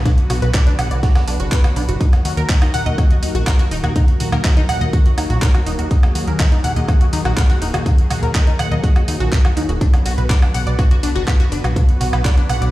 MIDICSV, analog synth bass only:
0, 0, Header, 1, 2, 480
1, 0, Start_track
1, 0, Key_signature, -6, "minor"
1, 0, Tempo, 487805
1, 54, Time_signature, 4, 2, 24, 8
1, 12508, End_track
2, 0, Start_track
2, 0, Title_t, "Analog synth bass"
2, 0, Program_c, 0, 38
2, 294, Note_on_c, 0, 35, 94
2, 387, Note_off_c, 0, 35, 0
2, 415, Note_on_c, 0, 35, 83
2, 506, Note_off_c, 0, 35, 0
2, 774, Note_on_c, 0, 35, 98
2, 866, Note_off_c, 0, 35, 0
2, 895, Note_on_c, 0, 35, 82
2, 986, Note_off_c, 0, 35, 0
2, 1255, Note_on_c, 0, 35, 93
2, 1347, Note_off_c, 0, 35, 0
2, 1376, Note_on_c, 0, 30, 81
2, 1466, Note_off_c, 0, 30, 0
2, 1734, Note_on_c, 0, 35, 96
2, 1826, Note_off_c, 0, 35, 0
2, 1856, Note_on_c, 0, 30, 84
2, 1946, Note_off_c, 0, 30, 0
2, 2214, Note_on_c, 0, 39, 99
2, 2306, Note_off_c, 0, 39, 0
2, 2336, Note_on_c, 0, 39, 85
2, 2426, Note_off_c, 0, 39, 0
2, 2694, Note_on_c, 0, 39, 91
2, 2786, Note_off_c, 0, 39, 0
2, 2815, Note_on_c, 0, 39, 84
2, 2906, Note_off_c, 0, 39, 0
2, 3174, Note_on_c, 0, 39, 91
2, 3266, Note_off_c, 0, 39, 0
2, 3295, Note_on_c, 0, 34, 81
2, 3386, Note_off_c, 0, 34, 0
2, 3653, Note_on_c, 0, 27, 99
2, 3746, Note_off_c, 0, 27, 0
2, 3775, Note_on_c, 0, 39, 86
2, 3866, Note_off_c, 0, 39, 0
2, 4133, Note_on_c, 0, 39, 97
2, 4226, Note_off_c, 0, 39, 0
2, 4255, Note_on_c, 0, 39, 83
2, 4345, Note_off_c, 0, 39, 0
2, 4614, Note_on_c, 0, 39, 96
2, 4706, Note_off_c, 0, 39, 0
2, 4735, Note_on_c, 0, 39, 82
2, 4826, Note_off_c, 0, 39, 0
2, 5093, Note_on_c, 0, 39, 93
2, 5186, Note_off_c, 0, 39, 0
2, 5215, Note_on_c, 0, 34, 80
2, 5306, Note_off_c, 0, 34, 0
2, 5573, Note_on_c, 0, 27, 96
2, 5666, Note_off_c, 0, 27, 0
2, 5694, Note_on_c, 0, 39, 83
2, 5785, Note_off_c, 0, 39, 0
2, 6053, Note_on_c, 0, 39, 96
2, 6146, Note_off_c, 0, 39, 0
2, 6175, Note_on_c, 0, 39, 86
2, 6266, Note_off_c, 0, 39, 0
2, 6534, Note_on_c, 0, 39, 94
2, 6626, Note_off_c, 0, 39, 0
2, 6655, Note_on_c, 0, 39, 82
2, 6746, Note_off_c, 0, 39, 0
2, 7015, Note_on_c, 0, 39, 98
2, 7107, Note_off_c, 0, 39, 0
2, 7136, Note_on_c, 0, 34, 84
2, 7226, Note_off_c, 0, 34, 0
2, 7495, Note_on_c, 0, 27, 96
2, 7587, Note_off_c, 0, 27, 0
2, 7616, Note_on_c, 0, 39, 88
2, 7706, Note_off_c, 0, 39, 0
2, 7974, Note_on_c, 0, 39, 98
2, 8067, Note_off_c, 0, 39, 0
2, 8096, Note_on_c, 0, 39, 83
2, 8186, Note_off_c, 0, 39, 0
2, 8455, Note_on_c, 0, 39, 96
2, 8547, Note_off_c, 0, 39, 0
2, 8576, Note_on_c, 0, 39, 80
2, 8666, Note_off_c, 0, 39, 0
2, 8935, Note_on_c, 0, 39, 94
2, 9027, Note_off_c, 0, 39, 0
2, 9056, Note_on_c, 0, 34, 80
2, 9146, Note_off_c, 0, 34, 0
2, 9414, Note_on_c, 0, 39, 96
2, 9506, Note_off_c, 0, 39, 0
2, 9535, Note_on_c, 0, 27, 86
2, 9626, Note_off_c, 0, 27, 0
2, 9895, Note_on_c, 0, 35, 95
2, 9987, Note_off_c, 0, 35, 0
2, 10016, Note_on_c, 0, 35, 83
2, 10106, Note_off_c, 0, 35, 0
2, 10375, Note_on_c, 0, 35, 99
2, 10467, Note_off_c, 0, 35, 0
2, 10495, Note_on_c, 0, 35, 78
2, 10586, Note_off_c, 0, 35, 0
2, 10855, Note_on_c, 0, 35, 94
2, 10947, Note_off_c, 0, 35, 0
2, 10975, Note_on_c, 0, 30, 85
2, 11066, Note_off_c, 0, 30, 0
2, 11334, Note_on_c, 0, 30, 97
2, 11426, Note_off_c, 0, 30, 0
2, 11455, Note_on_c, 0, 35, 83
2, 11546, Note_off_c, 0, 35, 0
2, 11815, Note_on_c, 0, 35, 96
2, 11907, Note_off_c, 0, 35, 0
2, 11936, Note_on_c, 0, 35, 81
2, 12026, Note_off_c, 0, 35, 0
2, 12295, Note_on_c, 0, 35, 98
2, 12387, Note_off_c, 0, 35, 0
2, 12416, Note_on_c, 0, 35, 81
2, 12506, Note_off_c, 0, 35, 0
2, 12508, End_track
0, 0, End_of_file